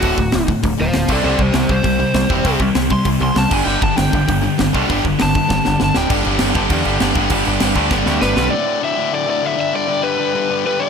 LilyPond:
<<
  \new Staff \with { instrumentName = "Overdriven electric guitar" } { \time 4/4 \key g \major \tempo 4 = 198 fis'4. r4 <c'' f''>8 <c'' f''>8 <a' d''>8 | <a' d''>8 <g' c''>8 <g' c''>8 c''2~ c''8~ | c''8 r4 c'''8 r8 c'''8 a''8 gis''8 | g''8 a''8 g''2 r4 |
r4 a''2 a''8 g''8 | r1 | r2. b'4 | \key g \lydian d''4 e''4 d''8 d''8 e''8 e''8 |
d''4 b'2 b'8 d''8 | }
  \new Staff \with { instrumentName = "Distorted electric guitar" } { \time 4/4 \key g \major r1 | <c g c' e' g' c''>1 | <c g c' e' g' c''>2.~ <c g c' e' g' c''>8 <g, d g b d' g'>8~ | <g, d g b d' g'>2.~ <g, d g b d' g'>8 <g, d g b d' g'>8~ |
<g, d g b d' g'>2.~ <g, d g b d' g'>8 r8 | <g, d g b d' g'>4. <g, d g b d' g'>4. <g, d g b d' g'>4 | <g, d g b d' g'>4. <g, d g b d' g'>4. <g, d g b d' g'>4 | \key g \lydian r1 |
r1 | }
  \new Staff \with { instrumentName = "Distorted electric guitar" } { \clef bass \time 4/4 \key g \major <d, a, d>8 <d, a,>8 <d, a,>8 <d, a,>8 <d, a,>8 <d, a,>8 <d, a,>8 <c g c'>8 | <c g c'>8 <c g>8 <c g>8 <c g>8 <c g>8 <c g>8 <c g>8 <c g c'>8 | <c g c'>8 <c g>8 <c g>8 <c g>8 <c g>8 <c g>8 <c g>8 <g, d g>8 | <g, d g>8 <g, d>8 <g, d>8 <g, d>8 <g, d>8 <g, d>8 <g, d>8 <g, d g>8 |
<g, d g>8 <g, d>8 <g, d>8 <g, d>8 <g, d>8 <g, d>8 <g, d>8 <g, d g>8 | <g, d g>8 <g, d g>8 <g, d g>8 <g, d g>8 <g, d g>8 <g, d g>8 <g, d g>8 <g, d g>8 | <g, d g>8 <g, d g>8 <g, d g>8 <g, d g>8 <g, d g>8 <g, d g>8 <g, d g>8 <g, d g>8 | \key g \lydian <d, a, d>8 <d, a, d>8 <d, a, d>8 <d, a, d>8 <d, a, d>8 <d, a, d>8 <d, a, d>8 <g, d g>8 |
<g, d g>8 <g, d g>8 <g, d g>8 <g, d g>8 <g, d g>8 <g, d g>8 <g, d g>8 <g, d g>8 | }
  \new Staff \with { instrumentName = "Overdriven electric guitar" } { \clef bass \time 4/4 \key g \major <d, a, d>8 <d, a,>8 <d, a,>8 <d, a,>8 <d, a,>8 <d, a,>8 <d, a,>8 <c g c'>8 | <c g c'>8 <c g>8 <c g>8 <c g>8 <c g>8 <c g>8 <c g>8 <c g c'>8 | <c g c'>8 <c g>8 <c g>8 <c g>8 <c g>8 <c g>8 <c g>8 <g, d g>8 | <g, d g>8 <g, d>8 <g, d>8 <g, d>8 <g, d>8 <g, d>8 <g, d>8 <g, d g>8 |
<g, d g>8 <g, d>8 <g, d>8 <g, d>8 <g, d>8 <g, d>8 <g, d>8 <g, d g>8 | <g, d g>8 <g, d g>8 <g, d g>8 <g, d g>8 <g, d g>8 <g, d g>8 <g, d g>8 <g, d g>8 | <g, d g>8 <g, d g>8 <g, d g>8 <g, d g>8 <g, d g>8 <g, d g>8 <g, d g>8 <g, d g>8 | \key g \lydian r1 |
r1 | }
  \new Staff \with { instrumentName = "Picked electric bass" } { \clef bass \time 4/4 \key g \major d,,8 d,,8 d,,4 d,,8 d,,8 d,,8 c,8 | c,8 c,8 c,8 c,8 c,4 c,8 e,,8 | c,8 c,8 c,4 c,8 c,8 c,8 g,,8 | g,,8 g,,8 g,,8 g,,8 g,,4 g,,8 c,8 |
g,,8 g,,8 g,,4 g,,8 g,,8 g,,8 d,,8 | g,,8 g,,8 g,,8 g,,8 e,8 g,,8 g,,8 g,,8 | g,,8 g,,8 g,,8 d,8 g,,8 d,8 g,,8 b,,8 | \key g \lydian r1 |
r1 | }
  \new DrumStaff \with { instrumentName = "Drums" } \drummode { \time 4/4 <hho bd>8 bd8 <hho sn>8 bd8 <hho bd>4 <hho sn>8 <cymc bd>8 | r8 bd8 <hho sn>8 bd8 <hho bd>4 <hho sn>8 bd8 | <hho bd>8 bd8 <hho sn>8 bd8 <hho bd>4 <hho sn>8 <cymc bd>8 | r8 bd8 <hho sn>8 bd8 <hho bd>4 <hho sn>8 bd8 |
<hho bd>8 bd8 <hho sn>8 bd8 <bd sn>8 sn8 sn8 sn8 | <cymc bd>8 cymc8 <cymc sn>8 <cymc bd>8 <cymc bd>8 cymc8 <cymc sn>8 <cymc bd>8 | <cymc bd>8 cymc8 <cymc sn>8 <cymc bd>8 <bd sn>8 sn8 sn8 sn8 | r4 r4 r4 r4 |
r4 r4 r4 r4 | }
>>